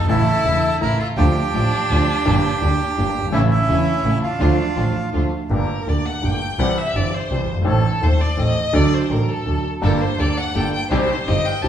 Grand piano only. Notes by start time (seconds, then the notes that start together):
0.01 G1 G#1
0.09 A1 A2 C#3 E3 A3 E4
0.45 E1 E2 C#3 E3 A3 E4
0.81 A1 A2 C#3 E3 A3 E4
1.18 D2 D3 F3 A3 F4
1.54 A1 A2 D3 F3 A3 F4
1.91 D2 D3 F3 A3 F4
2.25 G1 G2 D3 G3 A#3 G4
2.62 D2 D3 G3 A#3 G4
2.97 G1 G2 D3 G3 A#3 G4
3.20 F#1
3.25 G1 G#1
3.32 A1 A2 C#3 E3 A3 E4
3.69 E1 E2 C#3 E3 A3 E4
4.05 A1 A2 C#3 E3 A3 E4
4.40 D2 D3 F3 A3 F4
4.76 A1 A2 D3 F3 A3 F4
5.13 D2 D3 F3 A3 F4
5.50 G1 G2 D3 A3 A#3 G4
5.87 D2 D3 A3 A#3 G4
6.22 G1 G2 D3 A3 A#3 G4
6.59 C2 C3 E3 G3 C4 G4
6.95 G1 G2 E3 G3 C4 G4
7.31 C2 C3 E3 G3 C4 G4
7.53 F#1
7.57 G1
7.62 G#1 A1 A2 D#3 A3 C4 A4
8.01 D#1 D#2 D#3 A3 C4 A4
8.37 A1 A2 D#3 A3 C4 A4
8.73 D2 D3 F#3 A3 D4 A4
9.10 A1 A2 F#3 A3 D4 A4
9.46 D2 D3 F#3 A3 D4 A4
9.82 G1 G2 G3 A#3 D4 A4
10.19 D2 D3 G3 A#3 D4 A4
10.55 G1 G2 G3 A#3 D4 A4
10.91 C2 C3 D#3 G3 C4 G4
11.27 G1 G2 D#3 G3 C4 G4
11.63 C2 C3 D#3 G3 C4 G4